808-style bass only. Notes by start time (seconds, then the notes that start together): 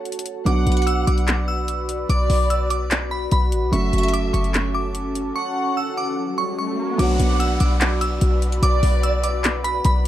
0.46 B1
0.67 B1
1.07 B1
2.09 B1
2.30 B1
3.32 B1
3.52 A1
3.63 B1
3.73 F#1
3.93 F#1
4.34 F#1
6.99 B1
7.20 B1
7.61 B1
8.22 B1
8.63 B1
8.83 B1
9.85 B1